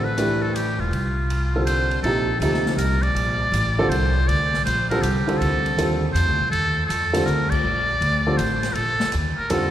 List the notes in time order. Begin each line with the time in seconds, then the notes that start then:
Already playing: A1
0.04 B4
0.18 E3 A3 D4 G4 B4, hi-hat pedal, ride
0.42 A4
0.56 G4, hi-hat pedal, ride
0.79 E1 F4
0.91 C2, ride
1.30 ride
1.56 D3 G3 C4 F4 A4
1.65 C5, hi-hat pedal, ride
1.91 ride
2.03 A#1 C3 F3 A#3 D#4 G4 A4, ride
2.40 D2 C3 F3 A#3 D#4 G4 A4, hi-hat pedal, ride
2.54 snare
2.66 snare
2.77 C2 A#4, hi-hat pedal, ride
3.02 D5, ride
3.15 A#1, ride
3.52 A1, hi-hat pedal, ride
3.79 D3 G3 C4 F4 A4
3.89 C2 C5, ride
4.28 D2 D5, ride
4.54 snare
4.65 A#1 C5, hi-hat pedal, ride
4.90 D3 G3 C4 F4 A4 A#4, ride
5.02 C2 G4, hi-hat pedal, ride
5.27 D3 G3 C4 F4 A4, muted upright bass stroke, ride
5.38 D2 A4, ride
5.66 ride
5.77 D#2 D3 G3 C4 F4 A4, hi-hat pedal, ride
6.12 F2 C5, hi-hat pedal, ride
6.27 D2
6.39 A#1
6.50 D#2 A4, ride
6.86 F2 A4, hi-hat pedal, ride
7.13 D3 G3 C4 F4 A4, snare, ride
7.25 D2 A#4, hi-hat pedal
7.50 D5, kick, crash
7.64 A#1
8.01 D2, ride
8.26 D3 G3 C4 F4 A4
8.37 A1 C5, hi-hat pedal, ride
8.63 snare, ride
8.74 A#1 A4, ride
9.00 muted upright bass stroke, snare
9.12 D#2, hi-hat pedal, ride
9.37 A#4, muted upright bass stroke
9.50 F2 D3 G3 C4 F4 A4, hi-hat pedal, ride